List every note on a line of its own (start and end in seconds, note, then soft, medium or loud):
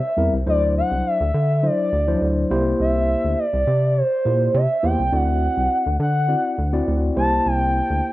0.00 0.34 E5 loud
0.17 0.30 E2 medium
0.17 0.36 G3 medium
0.17 0.36 C4 medium
0.17 0.36 E4 medium
0.17 0.36 A#4 loud
0.33 0.44 C2 medium
0.46 0.82 D2 loud
0.46 1.17 F#3 medium
0.46 1.18 D4 medium
0.46 1.18 E4 medium
0.46 1.18 C5 medium
0.46 0.75 D5 loud
0.77 1.08 F#5 loud
0.91 1.02 C2 medium
1.06 1.67 E5 loud
1.20 1.31 D2 loud
1.34 1.69 D3 loud
1.63 1.90 F#3 medium
1.63 1.90 D4 medium
1.63 1.90 E4 medium
1.63 1.90 C5 medium
1.63 2.52 D5 loud
1.92 2.15 D2 medium
2.07 2.14 F3 medium
2.07 2.51 D4 medium
2.07 2.50 E4 medium
2.07 2.50 C5 loud
2.14 2.54 F#3 medium
2.21 2.44 D2 medium
2.51 2.73 C2 loud
2.51 3.44 A#3 loud
2.51 3.44 E4 medium
2.51 3.44 G4 medium
2.51 3.44 C5 loud
2.80 3.15 C2 loud
2.80 3.40 E5 loud
3.24 3.35 D2 medium
3.39 3.99 D5 loud
3.53 3.64 C2 loud
3.67 4.02 C3 medium
3.97 4.57 C5 loud
4.25 4.48 A#2 medium
4.25 4.61 A#3 medium
4.25 4.61 E4 medium
4.25 4.61 G4 medium
4.25 4.61 C5 medium
4.54 4.67 C3 loud
4.54 4.86 E5 medium
4.83 4.96 E2 medium
4.83 5.01 A#3 medium
4.83 5.02 E4 medium
4.83 5.02 G4 medium
4.83 5.02 C5 medium
4.83 5.13 G5 loud
4.99 5.10 C2 medium
5.12 5.48 D2 loud
5.12 5.83 C4 medium
5.12 5.83 E4 medium
5.12 5.84 F#4 medium
5.12 5.84 D5 medium
5.12 5.97 F#5 loud
5.57 5.68 C2 medium
5.86 5.97 D2 loud
6.00 6.35 D3 medium
6.00 6.84 F#5 loud
6.28 6.55 C4 medium
6.28 6.55 E4 medium
6.28 6.56 F#4 medium
6.28 6.56 D5 medium
6.58 6.81 D2 loud
6.73 7.16 C4 loud
6.73 7.15 E4 medium
6.73 7.16 F#4 loud
6.73 7.16 D5 loud
6.88 7.10 D2 loud
7.16 7.39 C2 medium
7.16 8.10 A#3 medium
7.16 8.10 E4 medium
7.16 8.10 G4 medium
7.16 8.10 C5 loud
7.16 7.48 A5 loud
7.46 7.81 C2 loud
7.46 8.13 G5 loud
7.90 8.01 D2 medium